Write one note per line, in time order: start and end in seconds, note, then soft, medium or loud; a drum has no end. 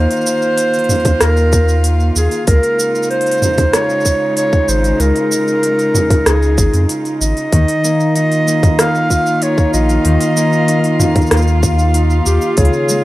0.00 2.47 D#3 medium
0.00 3.84 A#3 medium
0.00 7.53 F4 medium
0.00 1.23 C5 loud
0.00 4.49 F5 medium
0.11 open hi-hat soft
0.11 cabasa soft
0.16 cabasa soft
0.21 cabasa soft
0.27 cabasa medium
0.37 cabasa soft
0.42 cabasa soft
0.58 open hi-hat medium
0.58 cabasa soft
0.73 open hi-hat soft
0.73 cabasa soft
0.79 open hi-hat soft
0.84 open hi-hat soft
0.89 mid tom medium
0.89 open hi-hat soft
0.89 cabasa medium
0.94 open hi-hat soft
1.00 open hi-hat soft
1.05 kick medium
1.05 mid tom medium
1.05 open hi-hat soft
1.05 cabasa soft
1.21 2.11 D#2 medium
1.21 1.89 A#4 medium
1.21 cross-stick medium
1.21 open hi-hat medium
1.21 cabasa soft
1.37 cabasa soft
1.53 kick medium
1.53 cabasa medium
1.68 cabasa soft
1.84 open hi-hat medium
1.84 cabasa soft
2.00 cabasa soft
2.16 2.29 D#2 medium
2.16 2.45 G#4 medium
2.16 cabasa medium
2.31 open hi-hat soft
2.31 cabasa soft
2.47 2.60 C#2 medium
2.47 7.53 C#3 medium
2.47 3.07 A#4 loud
2.47 kick loud
2.47 open hi-hat medium
2.47 cabasa soft
2.61 7.53 G#3 medium
2.61 open hi-hat soft
2.61 cabasa soft
2.68 9.01 D#4 medium
2.79 cabasa medium
2.95 cabasa soft
3.03 cabasa soft
3.10 3.76 C5 loud
3.10 open hi-hat soft
3.21 open hi-hat soft
3.26 open hi-hat soft
3.26 cabasa soft
3.31 open hi-hat soft
3.31 cabasa soft
3.37 cabasa soft
3.42 mid tom medium
3.42 cabasa medium
3.53 cabasa soft
3.58 kick loud
3.58 mid tom medium
3.58 open hi-hat soft
3.58 cabasa soft
3.73 4.36 C#5 medium
3.73 cross-stick medium
3.73 open hi-hat medium
3.73 cabasa soft
3.90 cabasa soft
4.00 cabasa soft
4.05 kick medium
4.05 cabasa medium
4.37 4.71 C#5 medium
4.37 open hi-hat medium
4.37 cabasa soft
4.53 kick medium
4.53 cabasa soft
4.68 4.94 G#1 medium
4.68 5.02 C5 medium
4.68 cabasa medium
4.84 open hi-hat soft
4.84 cabasa soft
5.00 5.12 C#2 loud
5.00 6.28 A#4 loud
5.00 open hi-hat medium
5.00 cabasa soft
5.16 open hi-hat soft
5.16 cabasa soft
5.32 cabasa medium
5.48 cabasa soft
5.63 open hi-hat medium
5.63 cabasa soft
5.79 open hi-hat soft
5.79 cabasa soft
5.95 mid tom medium
5.95 cabasa medium
6.10 kick loud
6.10 mid tom medium
6.10 open hi-hat soft
6.10 cabasa soft
6.26 6.57 C#2 medium
6.26 6.94 G#4 medium
6.26 cross-stick medium
6.26 open hi-hat medium
6.26 cabasa soft
6.42 cabasa soft
6.58 6.71 G#1 medium
6.58 kick medium
6.58 cabasa medium
6.73 6.86 F2 medium
6.73 open hi-hat soft
6.73 cabasa soft
6.89 open hi-hat medium
6.89 cabasa soft
7.05 open hi-hat soft
7.05 cabasa soft
7.21 7.34 G#1 medium
7.21 8.12 D#5 loud
7.21 cabasa medium
7.37 open hi-hat soft
7.37 cabasa soft
7.52 7.65 D#2 medium
7.52 10.04 D#3 medium
7.52 12.58 D#3 medium
7.52 kick loud
7.52 open hi-hat medium
7.52 cabasa soft
7.68 open hi-hat soft
7.68 cabasa soft
7.84 8.47 A#3 medium
7.84 cabasa medium
7.91 13.04 A#3 medium
8.00 cabasa soft
8.16 8.78 D#4 medium
8.16 13.04 F4 medium
8.16 8.81 D#5 loud
8.16 open hi-hat medium
8.16 cabasa soft
8.32 open hi-hat soft
8.32 cabasa soft
8.47 10.36 A#3 medium
8.47 cabasa medium
8.63 kick medium
8.63 mid tom medium
8.63 open hi-hat soft
8.63 cabasa soft
8.73 13.04 F5 medium
8.79 9.42 D#4 medium
8.79 9.44 F5 medium
8.79 cross-stick medium
8.79 open hi-hat medium
8.79 cabasa soft
8.95 cabasa soft
9.10 9.73 F4 medium
9.10 kick medium
9.10 cabasa medium
9.26 cabasa soft
9.42 10.68 D#4 medium
9.42 9.73 C#5 medium
9.42 open hi-hat medium
9.42 cabasa soft
9.58 kick medium
9.58 cabasa soft
9.73 9.99 A#1 medium
9.73 11.62 F4 medium
9.73 11.59 D#5 medium
9.73 cabasa medium
9.89 open hi-hat soft
9.89 cabasa soft
10.05 10.18 D#2 medium
10.05 12.63 D#3 medium
10.05 open hi-hat medium
10.21 open hi-hat soft
10.21 cabasa soft
10.37 10.99 A#3 medium
10.37 cabasa medium
10.53 cabasa soft
10.68 11.31 D#4 medium
10.68 open hi-hat medium
10.68 cabasa soft
10.84 open hi-hat soft
10.84 cabasa soft
11.00 13.04 A#3 medium
11.00 mid tom medium
11.00 cabasa medium
11.16 kick medium
11.16 mid tom medium
11.16 open hi-hat soft
11.16 cabasa soft
11.21 cabasa soft
11.26 cabasa soft
11.31 12.21 D#2 medium
11.31 11.94 D#4 medium
11.31 cross-stick medium
11.31 open hi-hat medium
11.31 cabasa soft
11.37 cabasa soft
11.42 cabasa soft
11.47 cabasa soft
11.63 12.25 F4 medium
11.63 kick medium
11.63 cabasa medium
11.79 cabasa soft
11.94 13.04 D#4 medium
11.94 open hi-hat medium
11.94 cabasa soft
12.10 cabasa soft
12.26 12.39 D#2 medium
12.26 13.04 F4 medium
12.26 12.59 G4 medium
12.26 cabasa medium
12.41 open hi-hat soft
12.41 cabasa soft
12.57 12.70 C#2 medium
12.57 13.04 C#3 medium
12.57 13.04 G#4 medium
12.57 kick loud
12.57 open hi-hat medium
12.57 cabasa soft
12.65 open hi-hat soft
12.73 cabasa soft
12.89 13.04 G#3 medium
12.89 cabasa medium